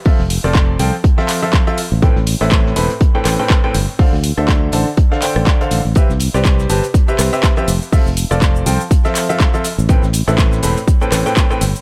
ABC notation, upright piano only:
X:1
M:4/4
L:1/16
Q:"Swing 16ths" 1/4=122
K:Am
V:1 name="Upright piano"
[F,CFAe] z2 [F,CFAd]3 [F,CFAg] z2 [F,CFAe]2 [F,CFAe]2 [F,CFAe] z2 | [A,,CABg] z2 [A,,CABe]3 [A,,CABb] z2 [A,,CABg]2 [A,,CABg]2 [A,,CABg] z2 | [D,DAcf] z2 [D,DAce]3 [D,DAca] z2 [D,DAcf] [D,DAcg]3 [D,DAcf]2 z | [C,CGBe] z2 [C,CGBd]3 [C,CGBa] z2 [C,CGBe]2 [C,CGBe]2 [F,CGBe] z2 |
[F,CFAe] z2 [F,CFAd]3 [F,CFAg] z2 [F,CFAe]2 [F,CFAe]2 [F,CFAe] z2 | [A,,CABg] z2 [A,,CABe]3 [A,,CABb] z2 [A,,CABg]2 [A,,CABg]2 [A,,CABg] z2 |]